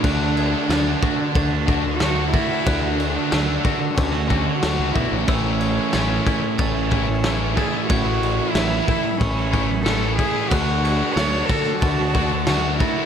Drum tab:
CC |xxxxxxxx|xxxxxxxx|xxxxxxxx|xxxxxxxx|
SD |--o---o-|--o---o-|--o---o-|--o---o-|
BD |o--ooo-o|o--ooo-o|o--ooo-o|o--ooo-o|

CC |xxxxxxxx|
SD |--o---o-|
BD |o--ooo-o|